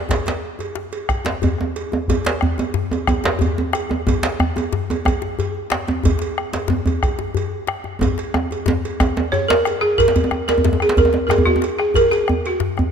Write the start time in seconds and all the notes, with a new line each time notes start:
0.09 bombo rim, bombo low, cowbell, djembe slap, djembe bass
0.11 djembe slap
0.26 cowbell, djembe slap
0.28 djembe slap
0.42 djembe slap
0.59 cowbell, djembe slap, djembe tone
0.75 bombo rim, djembe slap
0.92 cowbell, djembe slap
1.09 bombo rim, bombo low, cowbell
1.25 bombo rim, djembe slap, djembe tone
1.42 cowbell, djembe bass
1.44 djembe bass
1.58 bombo rim, djembe slap, djembe tone
1.76 cowbell
1.92 djembe slap, djembe tone
2.08 bombo low, cowbell, djembe slap, djembe tone, djembe bass
2.25 cowbell, djembe slap
2.26 djembe slap
2.41 bombo rim, djembe bass
2.58 cowbell, djembe slap, djembe tone
2.74 djembe slap, djembe bass
2.91 cowbell, djembe tone
3.07 bombo rim, bombo low, cowbell, djembe tone
3.24 djembe slap, djembe tone
3.25 djembe slap
3.39 djembe bass
3.41 cowbell, djembe bass
3.56 djembe slap, djembe tone
3.73 bombo rim, cowbell, djembe slap
3.89 bombo rim, djembe tone
4.07 bombo low, cowbell, djembe slap, djembe tone, djembe bass
4.23 cowbell, djembe slap
4.40 bombo rim, djembe bass
4.56 cowbell, djembe slap, djembe tone
4.73 djembe slap, djembe bass
4.90 cowbell, djembe tone
5.05 bombo rim, bombo low, cowbell, djembe tone
5.22 djembe slap, djembe tone
5.39 cowbell, djembe bass
5.55 djembe slap
5.70 bombo rim, djembe slap
5.88 bombo rim, djembe tone
6.04 bombo low, cowbell, djembe slap, djembe bass
6.06 djembe bass
6.19 cowbell, djembe slap
6.38 bombo rim
6.53 cowbell, djembe slap, djembe tone
6.68 djembe slap, djembe tone, djembe bass
6.86 cowbell, djembe bass
7.03 bombo rim, bombo low, cowbell
7.19 djembe slap, djembe tone
7.35 cowbell, djembe bass
7.51 djembe slap
7.67 bombo rim, djembe slap
7.84 bombo rim, djembe tone
8.01 bombo low, cowbell, djembe slap, djembe tone, djembe bass
8.18 cowbell, djembe slap
8.34 bombo rim, djembe tone
8.51 cowbell, djembe slap, djembe tone
8.66 djembe slap, djembe tone, djembe bass
8.83 cowbell, djembe slap
9.00 bombo rim, bombo low, cowbell, djembe tone
9.17 djembe slap, djembe tone
9.32 C#5, bombo rim, cowbell, djembe bass
9.48 A#4, djembe slap
9.65 bombo rim, cowbell, djembe slap
9.81 G#4, djembe slap, djembe tone
9.98 A#4, bombo rim, bombo low, cowbell, djembe bass
10.08 djembe slap
10.15 bombo rim, cowbell, djembe slap, djembe tone, djembe bass
10.24 djembe tone
10.31 bombo rim, djembe tone
10.48 A#4, cowbell, djembe slap
10.58 djembe bass
10.64 djembe slap, djembe tone, djembe bass
10.73 djembe tone
10.80 G#4, bombo rim, cowbell
10.89 djembe slap
10.97 A#4, bombo low, cowbell, djembe bass
11.05 djembe tone
11.13 bombo rim, djembe slap, djembe tone
11.27 G#4 A#4, bombo rim, djembe bass
11.31 cowbell, djembe slap
11.38 djembe bass
11.45 F#4, djembe tone
11.47 djembe tone
11.56 djembe tone
11.62 bombo rim, cowbell, djembe slap
11.78 G#4, bombo rim, djembe slap
11.94 A#4, bombo rim, bombo low, cowbell, djembe bass
12.11 G#4, bombo rim, cowbell, djembe slap, djembe tone
12.28 bombo rim, djembe bass
12.46 F#4, cowbell
12.60 djembe slap, djembe bass
12.77 bombo rim, djembe tone, djembe bass